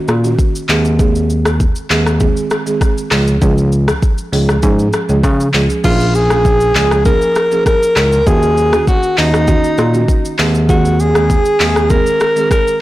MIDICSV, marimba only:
0, 0, Header, 1, 2, 480
1, 0, Start_track
1, 0, Tempo, 606061
1, 787, Time_signature, 4, 2, 24, 8
1, 10148, End_track
2, 0, Start_track
2, 0, Title_t, "Marimba"
2, 0, Program_c, 0, 12
2, 0, Note_on_c, 0, 51, 94
2, 0, Note_on_c, 0, 58, 82
2, 0, Note_on_c, 0, 61, 87
2, 0, Note_on_c, 0, 66, 105
2, 161, Note_off_c, 0, 51, 0
2, 162, Note_off_c, 0, 58, 0
2, 162, Note_off_c, 0, 61, 0
2, 163, Note_off_c, 0, 66, 0
2, 189, Note_on_c, 0, 51, 79
2, 191, Note_on_c, 0, 58, 69
2, 193, Note_on_c, 0, 61, 71
2, 194, Note_on_c, 0, 66, 84
2, 314, Note_off_c, 0, 51, 0
2, 315, Note_off_c, 0, 58, 0
2, 316, Note_off_c, 0, 61, 0
2, 317, Note_off_c, 0, 66, 0
2, 545, Note_on_c, 0, 51, 78
2, 547, Note_on_c, 0, 56, 73
2, 548, Note_on_c, 0, 60, 74
2, 549, Note_on_c, 0, 68, 90
2, 679, Note_off_c, 0, 51, 0
2, 680, Note_off_c, 0, 56, 0
2, 680, Note_off_c, 0, 60, 0
2, 681, Note_off_c, 0, 68, 0
2, 785, Note_on_c, 0, 51, 89
2, 786, Note_on_c, 0, 56, 79
2, 788, Note_on_c, 0, 60, 78
2, 789, Note_on_c, 0, 68, 98
2, 1229, Note_off_c, 0, 51, 0
2, 1230, Note_off_c, 0, 56, 0
2, 1231, Note_off_c, 0, 60, 0
2, 1231, Note_off_c, 0, 68, 0
2, 1505, Note_on_c, 0, 51, 79
2, 1507, Note_on_c, 0, 56, 71
2, 1508, Note_on_c, 0, 60, 71
2, 1510, Note_on_c, 0, 68, 89
2, 1639, Note_off_c, 0, 51, 0
2, 1640, Note_off_c, 0, 56, 0
2, 1640, Note_off_c, 0, 60, 0
2, 1641, Note_off_c, 0, 68, 0
2, 1745, Note_on_c, 0, 51, 95
2, 1747, Note_on_c, 0, 56, 91
2, 1748, Note_on_c, 0, 60, 85
2, 1750, Note_on_c, 0, 68, 100
2, 2081, Note_off_c, 0, 51, 0
2, 2082, Note_off_c, 0, 56, 0
2, 2083, Note_off_c, 0, 60, 0
2, 2083, Note_off_c, 0, 68, 0
2, 2110, Note_on_c, 0, 51, 78
2, 2112, Note_on_c, 0, 56, 74
2, 2113, Note_on_c, 0, 60, 74
2, 2115, Note_on_c, 0, 68, 84
2, 2439, Note_off_c, 0, 51, 0
2, 2440, Note_off_c, 0, 56, 0
2, 2440, Note_off_c, 0, 60, 0
2, 2441, Note_off_c, 0, 68, 0
2, 2465, Note_on_c, 0, 53, 78
2, 2467, Note_on_c, 0, 56, 74
2, 2469, Note_on_c, 0, 61, 71
2, 2470, Note_on_c, 0, 68, 87
2, 2688, Note_off_c, 0, 53, 0
2, 2689, Note_off_c, 0, 56, 0
2, 2689, Note_off_c, 0, 61, 0
2, 2690, Note_off_c, 0, 68, 0
2, 2706, Note_on_c, 0, 53, 92
2, 2708, Note_on_c, 0, 56, 85
2, 2710, Note_on_c, 0, 61, 84
2, 2711, Note_on_c, 0, 68, 96
2, 3150, Note_off_c, 0, 53, 0
2, 3151, Note_off_c, 0, 56, 0
2, 3152, Note_off_c, 0, 61, 0
2, 3152, Note_off_c, 0, 68, 0
2, 3426, Note_on_c, 0, 53, 78
2, 3428, Note_on_c, 0, 56, 72
2, 3429, Note_on_c, 0, 61, 72
2, 3431, Note_on_c, 0, 68, 87
2, 3559, Note_off_c, 0, 53, 0
2, 3560, Note_off_c, 0, 56, 0
2, 3561, Note_off_c, 0, 61, 0
2, 3562, Note_off_c, 0, 68, 0
2, 3666, Note_on_c, 0, 53, 95
2, 3668, Note_on_c, 0, 56, 86
2, 3669, Note_on_c, 0, 61, 88
2, 3671, Note_on_c, 0, 68, 107
2, 4001, Note_off_c, 0, 53, 0
2, 4002, Note_off_c, 0, 56, 0
2, 4003, Note_off_c, 0, 61, 0
2, 4004, Note_off_c, 0, 68, 0
2, 4030, Note_on_c, 0, 53, 79
2, 4032, Note_on_c, 0, 56, 72
2, 4034, Note_on_c, 0, 61, 74
2, 4035, Note_on_c, 0, 68, 83
2, 4155, Note_off_c, 0, 53, 0
2, 4156, Note_off_c, 0, 56, 0
2, 4156, Note_off_c, 0, 61, 0
2, 4157, Note_off_c, 0, 68, 0
2, 4385, Note_on_c, 0, 53, 80
2, 4387, Note_on_c, 0, 56, 73
2, 4388, Note_on_c, 0, 61, 75
2, 4390, Note_on_c, 0, 68, 84
2, 4519, Note_off_c, 0, 53, 0
2, 4520, Note_off_c, 0, 56, 0
2, 4520, Note_off_c, 0, 61, 0
2, 4521, Note_off_c, 0, 68, 0
2, 4625, Note_on_c, 0, 53, 92
2, 4627, Note_on_c, 0, 58, 82
2, 4628, Note_on_c, 0, 61, 84
2, 4629, Note_on_c, 0, 68, 96
2, 4759, Note_off_c, 0, 53, 0
2, 4760, Note_off_c, 0, 58, 0
2, 4760, Note_off_c, 0, 61, 0
2, 4761, Note_off_c, 0, 68, 0
2, 4990, Note_on_c, 0, 53, 84
2, 4992, Note_on_c, 0, 58, 74
2, 4993, Note_on_c, 0, 61, 74
2, 4995, Note_on_c, 0, 68, 88
2, 5115, Note_off_c, 0, 53, 0
2, 5116, Note_off_c, 0, 58, 0
2, 5116, Note_off_c, 0, 61, 0
2, 5117, Note_off_c, 0, 68, 0
2, 5345, Note_on_c, 0, 53, 78
2, 5347, Note_on_c, 0, 58, 71
2, 5348, Note_on_c, 0, 61, 73
2, 5350, Note_on_c, 0, 68, 86
2, 5479, Note_off_c, 0, 53, 0
2, 5480, Note_off_c, 0, 58, 0
2, 5480, Note_off_c, 0, 61, 0
2, 5481, Note_off_c, 0, 68, 0
2, 5584, Note_on_c, 0, 53, 91
2, 5586, Note_on_c, 0, 58, 90
2, 5588, Note_on_c, 0, 61, 86
2, 5589, Note_on_c, 0, 68, 106
2, 5718, Note_off_c, 0, 53, 0
2, 5719, Note_off_c, 0, 58, 0
2, 5720, Note_off_c, 0, 61, 0
2, 5721, Note_off_c, 0, 68, 0
2, 5950, Note_on_c, 0, 53, 75
2, 5951, Note_on_c, 0, 58, 72
2, 5952, Note_on_c, 0, 61, 71
2, 5954, Note_on_c, 0, 68, 90
2, 6074, Note_off_c, 0, 53, 0
2, 6075, Note_off_c, 0, 58, 0
2, 6076, Note_off_c, 0, 61, 0
2, 6077, Note_off_c, 0, 68, 0
2, 6545, Note_on_c, 0, 51, 93
2, 6547, Note_on_c, 0, 58, 81
2, 6548, Note_on_c, 0, 61, 84
2, 6550, Note_on_c, 0, 66, 95
2, 6679, Note_off_c, 0, 51, 0
2, 6680, Note_off_c, 0, 58, 0
2, 6680, Note_off_c, 0, 61, 0
2, 6681, Note_off_c, 0, 66, 0
2, 6911, Note_on_c, 0, 51, 83
2, 6912, Note_on_c, 0, 58, 77
2, 6914, Note_on_c, 0, 61, 74
2, 6915, Note_on_c, 0, 66, 88
2, 7035, Note_off_c, 0, 51, 0
2, 7036, Note_off_c, 0, 58, 0
2, 7037, Note_off_c, 0, 61, 0
2, 7037, Note_off_c, 0, 66, 0
2, 7266, Note_on_c, 0, 51, 77
2, 7267, Note_on_c, 0, 58, 72
2, 7269, Note_on_c, 0, 61, 73
2, 7271, Note_on_c, 0, 66, 86
2, 7399, Note_off_c, 0, 51, 0
2, 7400, Note_off_c, 0, 58, 0
2, 7401, Note_off_c, 0, 61, 0
2, 7402, Note_off_c, 0, 66, 0
2, 7505, Note_on_c, 0, 51, 96
2, 7507, Note_on_c, 0, 58, 87
2, 7509, Note_on_c, 0, 61, 87
2, 7510, Note_on_c, 0, 66, 105
2, 7639, Note_off_c, 0, 51, 0
2, 7640, Note_off_c, 0, 58, 0
2, 7640, Note_off_c, 0, 61, 0
2, 7641, Note_off_c, 0, 66, 0
2, 7870, Note_on_c, 0, 51, 79
2, 7872, Note_on_c, 0, 58, 72
2, 7874, Note_on_c, 0, 61, 73
2, 7875, Note_on_c, 0, 66, 89
2, 7995, Note_off_c, 0, 51, 0
2, 7996, Note_off_c, 0, 58, 0
2, 7997, Note_off_c, 0, 61, 0
2, 7997, Note_off_c, 0, 66, 0
2, 8225, Note_on_c, 0, 51, 83
2, 8226, Note_on_c, 0, 56, 75
2, 8228, Note_on_c, 0, 60, 70
2, 8230, Note_on_c, 0, 68, 86
2, 8359, Note_off_c, 0, 51, 0
2, 8359, Note_off_c, 0, 56, 0
2, 8360, Note_off_c, 0, 60, 0
2, 8361, Note_off_c, 0, 68, 0
2, 8466, Note_on_c, 0, 51, 94
2, 8467, Note_on_c, 0, 56, 85
2, 8468, Note_on_c, 0, 60, 87
2, 8470, Note_on_c, 0, 68, 104
2, 8599, Note_off_c, 0, 51, 0
2, 8600, Note_off_c, 0, 56, 0
2, 8600, Note_off_c, 0, 60, 0
2, 8601, Note_off_c, 0, 68, 0
2, 8830, Note_on_c, 0, 51, 82
2, 8831, Note_on_c, 0, 56, 75
2, 8833, Note_on_c, 0, 60, 72
2, 8835, Note_on_c, 0, 68, 93
2, 8955, Note_off_c, 0, 51, 0
2, 8955, Note_off_c, 0, 56, 0
2, 8956, Note_off_c, 0, 60, 0
2, 8957, Note_off_c, 0, 68, 0
2, 9185, Note_on_c, 0, 51, 75
2, 9187, Note_on_c, 0, 56, 72
2, 9189, Note_on_c, 0, 60, 71
2, 9190, Note_on_c, 0, 68, 90
2, 9319, Note_off_c, 0, 51, 0
2, 9320, Note_off_c, 0, 56, 0
2, 9320, Note_off_c, 0, 60, 0
2, 9321, Note_off_c, 0, 68, 0
2, 9425, Note_on_c, 0, 51, 98
2, 9427, Note_on_c, 0, 56, 90
2, 9429, Note_on_c, 0, 60, 90
2, 9430, Note_on_c, 0, 68, 106
2, 9559, Note_off_c, 0, 51, 0
2, 9560, Note_off_c, 0, 56, 0
2, 9560, Note_off_c, 0, 60, 0
2, 9561, Note_off_c, 0, 68, 0
2, 9790, Note_on_c, 0, 51, 81
2, 9791, Note_on_c, 0, 56, 74
2, 9793, Note_on_c, 0, 60, 70
2, 9795, Note_on_c, 0, 68, 87
2, 9914, Note_off_c, 0, 51, 0
2, 9915, Note_off_c, 0, 56, 0
2, 9916, Note_off_c, 0, 60, 0
2, 9917, Note_off_c, 0, 68, 0
2, 10148, End_track
0, 0, End_of_file